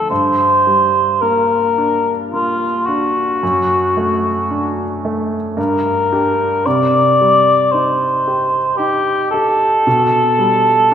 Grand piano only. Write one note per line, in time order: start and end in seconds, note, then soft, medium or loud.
0.00 0.13 F3 soft
0.00 0.12 A3 soft
0.00 0.13 D4 soft
0.11 3.38 G2 soft
0.67 1.55 G3 soft
1.23 2.11 A#3 soft
1.78 2.66 D4 soft
2.34 3.21 A#3 soft
2.88 3.42 D4 soft
3.43 5.54 F#2 soft
3.97 4.83 A3 soft
4.51 5.37 D4 soft
5.05 5.58 A3 soft
5.57 6.62 G2 soft
6.12 6.62 D4 soft
6.12 6.62 G4 soft
6.66 9.82 C3 soft
7.21 8.06 G3 soft
7.74 8.58 D#4 soft
8.28 9.12 G4 soft
8.79 9.64 D#4 soft
9.34 9.86 G4 soft
9.87 10.94 B2 soft
10.39 10.94 G3 soft